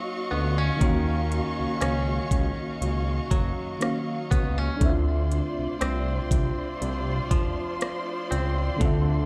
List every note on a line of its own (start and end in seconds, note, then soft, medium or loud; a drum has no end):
0.00 3.30 F#3 medium
0.00 0.76 A#3 medium
0.00 0.31 C#4 medium
0.00 0.77 C#4 medium
0.00 0.75 D#4 medium
0.00 0.78 F#4 medium
0.00 4.77 F#4 medium
0.00 4.77 D#5 medium
0.00 0.79 F5 medium
0.00 4.77 F5 medium
0.00 4.77 C#6 medium
0.31 0.70 D2 medium
0.31 0.58 B3 medium
0.58 1.80 C#4 soft
0.77 3.75 D#3 medium
0.77 3.76 A#3 medium
0.81 1.41 D#2 loud
0.81 4.81 D#3 medium
0.81 3.77 C#4 medium
0.81 3.78 F#4 medium
0.81 kick loud
0.81 closed hi-hat medium
0.85 3.79 F5 medium
1.32 closed hi-hat medium
1.59 1.68 C#2 soft
1.81 2.20 C#2 medium
1.81 4.31 C#4 medium
1.81 cross-stick loud
1.81 closed hi-hat medium
2.31 2.52 C#2 medium
2.31 kick medium
2.31 closed hi-hat medium
2.81 3.20 C#2 medium
2.81 closed hi-hat medium
3.31 3.52 F#1 medium
3.31 4.92 F#3 medium
3.31 kick medium
3.31 closed hi-hat medium
3.79 4.80 D#3 medium
3.79 4.81 A#3 medium
3.79 4.81 C#4 medium
3.79 4.82 F#4 soft
3.79 cross-stick loud
3.79 closed hi-hat medium
3.83 4.82 F5 medium
4.31 4.70 C#2 medium
4.31 4.58 B3 medium
4.31 kick medium
4.31 closed hi-hat medium
4.58 4.92 C#4 soft
4.76 8.76 A3 medium
4.76 8.75 D4 medium
4.81 5.41 D2 loud
4.81 8.77 C4 medium
4.81 4.89 E4 soft
4.81 9.26 F4 medium
4.81 9.26 C5 medium
4.81 9.26 D5 medium
4.81 9.26 C6 medium
4.81 kick loud
4.81 closed hi-hat medium
4.85 8.79 E5 medium
4.90 8.81 F4 medium
5.32 closed hi-hat medium
5.58 5.68 C2 soft
5.81 6.20 C2 medium
5.81 8.30 C4 medium
5.81 cross-stick loud
5.81 closed hi-hat medium
6.31 6.52 C2 loud
6.31 kick medium
6.31 closed hi-hat medium
6.82 7.20 C2 medium
6.82 closed hi-hat medium
7.31 7.52 F1 medium
7.31 9.26 F3 medium
7.31 kick medium
7.31 closed hi-hat medium
7.81 cross-stick loud
7.81 closed hi-hat medium
8.31 8.70 C#2 medium
8.31 9.26 C4 medium
8.31 closed hi-hat medium
8.76 9.26 D3 medium
8.76 9.26 A3 medium
8.81 9.26 D2 loud
8.81 9.26 D3 medium
8.81 9.26 C4 medium
8.81 9.26 F4 medium
8.81 kick loud
8.81 closed hi-hat medium
8.85 9.26 E5 medium